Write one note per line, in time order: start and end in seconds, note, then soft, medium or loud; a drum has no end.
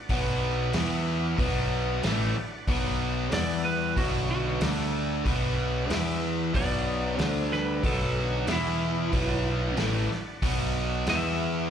0.00 0.72 D4 medium
0.00 0.72 F#4 medium
0.00 0.71 B4 medium
0.00 0.72 D5 medium
0.09 0.70 B1 medium
0.09 0.73 B2 medium
0.09 0.74 F#3 loud
0.09 0.73 B3 loud
0.09 kick medium
0.09 open hi-hat medium
0.72 1.35 E2 medium
0.72 1.38 E3 medium
0.72 1.37 B3 medium
0.72 1.38 B3 medium
0.72 1.37 E4 medium
0.72 1.38 E4 loud
0.72 1.36 B4 medium
0.72 1.37 E5 medium
0.72 snare loud
0.72 open hi-hat medium
1.38 1.99 B1 medium
1.38 2.02 B2 medium
1.38 2.02 F#3 medium
1.38 2.03 B3 loud
1.38 3.30 D4 medium
1.38 3.30 F#4 medium
1.38 3.30 B4 medium
1.38 3.30 D5 medium
1.38 kick loud
1.38 open hi-hat soft
2.03 2.33 A1 medium
2.03 2.35 A2 medium
2.03 2.35 E3 medium
2.03 2.35 A3 medium
2.03 snare loud
2.03 open hi-hat soft
2.36 muted overdriven electric guitar stroke medium
2.67 3.28 B1 medium
2.67 3.33 B2 loud
2.67 3.34 F#3 medium
2.67 3.34 B3 loud
2.67 kick medium
2.67 open hi-hat medium
3.31 3.93 E2 medium
3.31 3.96 E3 medium
3.31 3.96 B3 medium
3.31 3.97 B3 loud
3.31 3.96 E4 medium
3.31 3.97 E4 loud
3.31 3.96 B4 medium
3.31 3.64 D5 loud
3.31 3.96 E5 medium
3.31 snare loud
3.31 open hi-hat medium
3.36 3.64 B3 medium
3.65 3.96 G3 medium
3.65 3.96 B4 medium
3.96 4.57 B1 medium
3.96 4.61 B2 medium
3.96 4.28 D3 medium
3.96 4.61 F#3 loud
3.96 4.61 B3 loud
3.96 4.60 D4 medium
3.96 4.60 F#4 medium
3.96 4.28 F#4 medium
3.96 4.61 B4 medium
3.96 4.61 D5 medium
3.96 kick medium
3.96 open hi-hat soft
4.31 4.60 D3 medium
4.31 4.61 F#4 medium
4.61 5.22 D2 loud
4.61 5.25 D3 medium
4.61 5.25 A3 medium
4.61 5.25 D4 medium
4.61 5.26 D4 medium
4.61 5.25 A4 medium
4.61 5.26 D5 medium
4.61 snare loud
4.61 open hi-hat medium
4.79 snare soft
5.25 5.86 B1 medium
5.25 5.90 B2 loud
5.25 5.91 F#3 medium
5.25 5.91 B3 loud
5.25 5.90 D4 medium
5.25 5.91 F#4 medium
5.25 5.88 B4 medium
5.25 5.90 D5 medium
5.25 kick loud
5.25 open hi-hat medium
5.89 6.51 E2 medium
5.89 6.54 E3 medium
5.89 6.54 B3 medium
5.89 6.54 E4 medium
5.89 6.54 B4 medium
5.89 6.54 E5 medium
5.89 snare loud
5.89 open hi-hat medium
6.54 7.15 B1 medium
6.54 7.18 B2 medium
6.54 7.19 F#3 medium
6.54 7.19 B3 loud
6.54 7.23 B3 medium
6.54 7.19 D4 medium
6.54 7.19 F#4 medium
6.54 7.19 B4 medium
6.54 7.18 D5 medium
6.54 7.23 D5 loud
6.54 kick medium
6.54 open hi-hat medium
7.18 7.80 D2 medium
7.18 7.82 D3 medium
7.18 7.83 A3 medium
7.18 7.83 D4 medium
7.18 7.84 A4 medium
7.18 7.83 D5 medium
7.18 snare loud
7.18 open hi-hat soft
7.23 7.49 A3 medium
7.23 7.49 C5 loud
7.53 7.83 G3 medium
7.53 7.84 B4 medium
7.53 snare soft
7.83 8.45 B1 medium
7.83 8.47 B2 medium
7.83 8.47 F#3 loud
7.83 8.47 B3 loud
7.83 8.48 D4 medium
7.83 8.48 F#4 medium
7.83 8.01 A4 loud
7.83 8.48 B4 medium
7.83 8.48 D5 medium
7.83 kick medium
7.83 open hi-hat soft
7.89 8.02 F#3 medium
8.03 8.18 F#3 medium
8.03 8.20 A4 medium
8.20 8.52 D3 medium
8.20 8.49 F#4 medium
8.47 9.09 E2 medium
8.47 9.12 E3 medium
8.47 9.12 B3 medium
8.47 9.13 B3 medium
8.47 9.12 E4 loud
8.47 9.13 E4 medium
8.47 9.11 B4 medium
8.47 9.13 E5 medium
8.47 snare loud
8.47 open hi-hat medium
8.53 9.77 B2 medium
8.53 9.76 E4 medium
9.12 9.74 B1 medium
9.12 9.76 B2 medium
9.12 9.77 F#3 loud
9.12 9.77 B3 loud
9.12 11.05 D4 medium
9.12 11.05 F#4 medium
9.12 11.05 B4 medium
9.12 11.05 D5 medium
9.12 kick loud
9.12 open hi-hat soft
9.77 10.08 A1 loud
9.77 10.09 A2 medium
9.77 10.09 E3 medium
9.77 10.10 A3 medium
9.77 snare loud
9.77 open hi-hat medium
10.10 muted overdriven electric guitar stroke medium
10.10 muted picked electric bass stroke soft
10.10 snare soft
10.42 11.03 B1 medium
10.42 11.06 B2 loud
10.42 11.07 F#3 loud
10.42 11.07 B3 loud
10.42 kick medium
10.42 open hi-hat medium
11.07 11.68 E2 medium
11.07 11.70 E3 medium
11.07 11.70 B3 medium
11.07 11.70 B3 loud
11.07 11.70 E4 medium
11.07 11.70 E4 loud
11.07 11.70 B4 medium
11.07 11.70 E5 medium
11.07 snare loud
11.07 open hi-hat medium
11.11 11.70 B3 medium